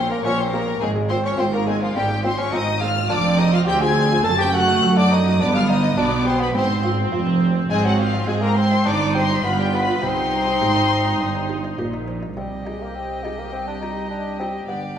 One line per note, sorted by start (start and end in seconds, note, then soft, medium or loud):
0.00 0.17 A#1 medium
0.00 0.15 A#2 medium
0.00 0.17 A#2 medium
0.00 0.10 C4 medium
0.00 0.11 E4 medium
0.10 0.25 A#3 medium
0.10 0.25 C4 medium
0.10 0.24 A#4 medium
0.10 0.25 A#5 loud
0.24 0.75 A#1 medium
0.24 0.75 A#2 medium
0.24 0.72 A#2 medium
0.24 0.32 C4 medium
0.24 0.39 C#4 loud
0.24 0.40 E4 medium
0.24 0.38 C#5 loud
0.24 0.38 C#6 loud
0.39 0.54 C4 medium
0.39 0.53 C4 medium
0.39 0.53 C5 medium
0.39 0.53 C6 medium
0.52 0.81 A#3 medium
0.52 0.60 C4 medium
0.52 0.68 G4 medium
0.52 0.81 A#4 medium
0.52 0.81 A#5 loud
0.67 0.81 C4 medium
0.81 1.32 G#1 medium
0.81 1.32 G#2 medium
0.81 1.29 G#2 medium
0.81 1.10 G#3 medium
0.81 0.89 C4 medium
0.81 0.89 G#4 medium
0.81 0.89 G#5 loud
0.96 1.11 G#4 medium
1.09 1.18 C4 medium
1.09 1.27 C4 medium
1.09 1.25 F4 medium
1.09 1.24 C5 medium
1.09 1.15 C6 loud
1.24 1.39 C4 medium
1.24 1.39 C#4 medium
1.24 1.38 C#5 medium
1.24 1.30 C#6 medium
1.38 1.89 G#1 medium
1.38 1.86 G#2 medium
1.38 1.89 G#2 medium
1.38 1.46 C4 medium
1.38 1.46 C4 loud
1.38 1.53 F4 medium
1.38 1.53 C5 medium
1.38 1.44 C6 loud
1.52 1.69 A#3 medium
1.52 1.68 C4 medium
1.52 1.67 A#4 medium
1.52 1.67 A#5 medium
1.67 1.82 G#3 medium
1.67 1.75 C4 medium
1.67 1.82 G#4 medium
1.67 1.81 G#4 medium
1.67 1.81 G#5 loud
1.81 1.89 F3 medium
1.81 1.96 C4 medium
1.81 1.95 F4 medium
1.81 1.96 F5 loud
1.94 2.47 G#1 medium
1.94 2.43 G#2 medium
1.94 2.46 G#2 medium
1.94 2.09 G3 medium
1.94 2.03 C4 medium
1.94 2.23 G4 medium
1.94 2.24 G5 loud
2.09 2.25 G#4 medium
2.23 2.31 C4 medium
2.23 2.33 C4 medium
2.23 2.39 F4 medium
2.23 2.38 C5 medium
2.23 2.39 C6 loud
2.38 2.53 C4 medium
2.38 2.54 C#4 medium
2.38 2.53 C#5 medium
2.38 2.54 C#6 loud
2.52 3.03 G#1 loud
2.52 3.00 G#2 medium
2.52 3.04 G#2 medium
2.52 2.61 C4 medium
2.52 2.82 D#4 medium
2.52 2.68 F4 medium
2.52 2.81 D#5 medium
2.52 2.82 D#6 loud
2.67 2.82 C4 medium
2.80 2.90 C4 medium
2.80 3.09 F4 loud
2.80 2.97 G#4 medium
2.80 2.88 F5 loud
2.80 3.10 F6 loud
2.96 3.11 C4 medium
3.10 3.64 F1 loud
3.10 3.64 F2 medium
3.10 4.21 C4 medium
3.10 3.41 D4 loud
3.10 3.38 D5 loud
3.10 3.39 D6 loud
3.24 3.40 C5 medium
3.39 3.52 D#4 medium
3.39 3.54 G#4 medium
3.39 3.53 D#5 loud
3.39 3.54 D#6 loud
3.53 3.68 F4 medium
3.53 3.60 F5 medium
3.53 3.60 F6 loud
3.66 4.24 D2 medium
3.66 4.21 D2 medium
3.66 3.82 G4 loud
3.66 3.83 G#4 medium
3.66 3.82 G5 loud
3.66 3.74 G6 loud
3.81 3.97 F4 medium
3.81 4.23 G#4 loud
3.81 4.25 G#5 loud
3.81 4.24 G#6 loud
3.97 4.12 C5 medium
4.12 4.26 F4 medium
4.24 4.82 F#1 medium
4.24 4.82 F#2 medium
4.24 4.79 F#2 medium
4.24 5.40 A3 loud
4.24 4.31 A4 loud
4.24 4.40 A5 loud
4.24 4.39 A6 loud
4.38 4.53 G4 loud
4.38 4.55 C5 medium
4.38 4.54 G5 loud
4.38 4.54 G6 loud
4.54 4.98 F#4 loud
4.54 4.69 A4 medium
4.54 4.98 F#5 loud
4.54 4.96 F#6 loud
4.68 4.83 D#4 medium
4.83 5.39 F#2 medium
4.83 5.39 F#3 medium
4.83 5.37 F#3 medium
4.83 4.98 A4 medium
4.97 5.13 D4 loud
4.97 5.12 D#4 medium
4.97 5.12 D5 loud
4.97 5.12 D6 loud
5.12 5.42 D#4 medium
5.12 5.27 C5 medium
5.12 5.41 D#5 medium
5.12 5.40 D#6 loud
5.26 5.40 D#4 medium
5.40 5.98 G1 loud
5.40 5.94 G2 medium
5.40 5.98 G2 medium
5.40 5.96 B3 medium
5.40 5.56 D4 loud
5.40 5.46 D5 loud
5.40 5.55 D6 loud
5.54 5.71 F4 loud
5.54 5.69 G4 medium
5.54 5.69 F5 medium
5.54 5.69 F6 loud
5.68 5.84 D4 medium
5.68 5.97 D#4 medium
5.68 5.98 D#5 medium
5.68 5.98 D#6 loud
5.83 5.98 B3 medium
5.97 6.54 B1 medium
5.97 6.51 B2 medium
5.97 6.54 B2 medium
5.97 6.54 B3 medium
5.97 6.12 D4 medium
5.97 6.10 D4 loud
5.97 6.27 D5 medium
5.97 6.26 D6 loud
6.11 6.27 B3 medium
6.25 6.42 C4 loud
6.25 6.41 G4 medium
6.25 6.41 C5 medium
6.25 6.41 C6 loud
6.39 6.55 B3 medium
6.39 6.54 B3 medium
6.39 6.55 B4 medium
6.39 6.47 B5 loud
6.54 7.13 G#1 loud
6.54 7.09 G#2 medium
6.54 7.13 G#2 medium
6.54 7.68 C4 medium
6.54 6.68 C4 medium
6.54 6.84 C5 medium
6.54 6.83 C6 loud
6.69 6.84 C5 medium
6.83 6.99 F4 medium
6.98 7.13 C4 medium
7.12 7.69 F1 loud
7.12 7.66 F2 medium
7.12 7.69 F2 medium
7.12 7.28 F4 medium
7.27 7.42 C4 medium
7.41 7.56 C5 medium
7.55 7.70 C4 medium
7.70 8.27 G#1 loud
7.70 8.24 G#2 medium
7.70 8.27 G#2 medium
7.70 7.86 G#3 loud
7.70 8.26 C4 medium
7.70 7.84 G#4 loud
7.70 7.84 G#5 loud
7.84 8.01 F#3 medium
7.84 7.99 F#4 medium
7.84 8.00 C5 medium
7.84 7.99 F#5 loud
7.99 8.29 F3 medium
7.99 8.28 F4 loud
7.99 8.14 F#4 medium
7.99 8.28 F5 loud
8.14 8.29 D#4 medium
8.27 8.85 G#2 medium
8.27 8.82 G#3 medium
8.27 8.43 G#3 loud
8.27 8.85 G#3 medium
8.27 8.84 C4 medium
8.27 8.43 F#4 medium
8.27 8.43 G#4 medium
8.27 8.33 G#5 loud
8.42 8.58 A#3 loud
8.42 8.58 D#4 medium
8.42 8.58 A#4 loud
8.42 8.57 A#5 loud
8.57 8.85 C4 loud
8.57 8.72 C5 medium
8.57 8.87 C5 medium
8.57 8.85 C6 loud
8.72 8.86 D#4 medium
8.85 9.43 G1 medium
8.85 9.43 G2 medium
8.85 9.40 G2 medium
8.85 9.14 D4 loud
8.85 9.44 D#4 medium
8.85 9.15 D5 loud
8.85 9.15 D6 loud
9.01 9.16 C5 medium
9.15 9.28 C4 medium
9.15 9.30 G4 medium
9.15 9.44 C5 medium
9.15 9.43 C6 loud
9.31 9.45 D#4 medium
9.43 10.01 G1 medium
9.43 10.02 G2 medium
9.43 9.99 G2 medium
9.43 9.58 B3 medium
9.43 10.02 F4 medium
9.43 9.59 B4 medium
9.43 9.59 B5 loud
9.59 9.72 G3 medium
9.59 9.73 G4 medium
9.59 9.74 D5 medium
9.59 9.74 G5 loud
9.73 10.05 B3 medium
9.73 9.89 G4 medium
9.73 10.03 B4 medium
9.73 10.03 B5 loud
9.88 10.03 F4 medium
10.02 10.60 C2 medium
10.02 10.57 C3 medium
10.02 10.60 C3 medium
10.02 11.79 C4 loud
10.02 12.17 D#4 medium
10.02 11.79 C5 medium
10.02 11.79 C6 loud
10.17 10.33 C5 medium
10.33 10.48 G4 medium
10.46 10.62 D#4 medium
10.61 11.20 G#1 medium
10.61 11.20 G#2 medium
10.61 11.17 G#2 medium
10.61 10.77 G4 medium
10.77 10.92 D#4 soft
10.91 11.06 C5 medium
11.05 11.21 D#4 medium
11.20 11.78 G1 medium
11.20 11.78 G2 medium
11.20 11.75 G2 medium
11.35 11.51 C5 medium
11.49 11.65 G4 medium
11.64 11.80 D#4 medium
11.79 12.36 A#1 medium
11.79 12.33 A#2 medium
11.79 12.36 A#2 medium
11.79 11.94 G4 medium
11.94 12.09 D#4 medium
12.08 12.23 C5 medium
12.23 12.37 D#4 soft
12.37 14.64 C2 medium
12.37 14.65 C3 soft
12.37 14.65 C3 medium
12.37 12.67 G3 medium
12.37 14.99 G4 soft
12.37 14.65 D#5 soft
12.37 14.65 G5 medium
12.66 12.84 G#3 medium
12.66 13.08 D#4 soft
12.66 13.08 G4 soft
12.82 12.97 A#3 medium
12.95 13.25 C4 medium
13.24 13.40 G#3 medium
13.24 13.46 D#4 soft
13.24 13.46 G4 soft
13.39 13.52 A#3 medium
13.53 13.67 C4 medium
13.68 13.74 D4 medium
13.81 14.09 D#4 medium
13.81 14.24 D#4 soft
13.81 14.24 G4 soft
14.10 14.39 D4 medium
14.40 14.53 C4 medium
14.40 14.61 D#4 soft
14.40 14.62 G4 soft
14.68 14.99 G1 medium
14.68 14.99 G2 soft
14.68 14.81 B3 medium
14.68 14.99 D5 soft
14.68 14.99 F5 soft